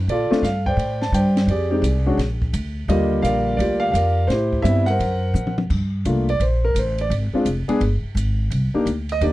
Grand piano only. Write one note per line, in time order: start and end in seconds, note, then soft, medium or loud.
0.10 0.30 F4 medium
0.10 0.76 A4 medium
0.10 0.45 D5 medium
0.30 0.41 A3 medium
0.30 0.42 C4 medium
0.30 0.42 D4 medium
0.30 0.42 F4 medium
0.43 0.64 F5 medium
0.66 1.14 C5 medium
0.66 1.14 D5 medium
0.66 1.02 G5 medium
1.02 1.14 A5 medium
1.14 1.47 C5 medium
1.14 1.47 D5 medium
1.14 1.50 G5 medium
1.50 1.69 G4 medium
1.50 2.16 G#4 medium
1.50 2.15 D5 medium
1.70 1.82 G#3 medium
1.70 1.82 C4 medium
1.70 1.82 D#4 medium
1.70 1.82 G4 medium
2.06 2.17 G#3 medium
2.06 2.17 C#4 medium
2.06 2.17 D4 medium
2.06 2.17 F#4 medium
2.89 3.87 D3 medium
2.89 3.87 G3 medium
2.89 3.87 A#3 medium
2.89 3.59 F4 medium
2.89 3.56 G4 medium
2.89 3.24 A#4 medium
2.89 3.21 D#5 medium
3.22 3.91 A#4 medium
3.22 3.55 D5 medium
3.22 3.59 F5 medium
3.57 4.26 F4 medium
3.57 4.26 G4 medium
3.57 3.82 D5 medium
3.80 3.90 F5 loud
3.92 4.29 F5 medium
3.96 4.28 A#4 medium
3.96 4.28 D5 medium
4.27 4.64 C5 medium
4.32 4.63 E4 medium
4.32 4.97 G4 medium
4.62 4.85 G3 medium
4.62 4.85 B3 medium
4.62 4.85 C4 medium
4.62 4.85 E4 medium
4.62 4.87 E5 loud
4.86 5.55 A#4 medium
4.86 5.55 C5 medium
4.86 5.53 F#5 loud
6.06 6.26 A3 medium
6.06 6.26 A#3 soft
6.06 6.26 D4 soft
6.06 6.26 F4 medium
6.30 6.41 D5 medium
6.42 6.63 C5 medium
6.65 6.76 A#4 medium
6.79 6.99 C5 medium
7.01 7.12 D5 medium
7.33 7.45 G#3 medium
7.33 7.45 C4 medium
7.33 7.45 D4 medium
7.33 7.45 F4 medium
7.68 7.79 G#3 medium
7.68 7.79 B3 medium
7.68 7.80 D4 medium
7.68 7.80 G#4 medium
8.74 8.85 A#3 medium
8.74 8.85 D4 medium
8.74 8.85 D#4 medium
8.74 8.86 G4 medium
9.12 9.23 D#5 loud
9.22 9.33 A#3 medium
9.22 9.33 D4 soft
9.22 9.33 D#4 soft
9.22 9.33 G4 medium
9.22 9.33 D5 medium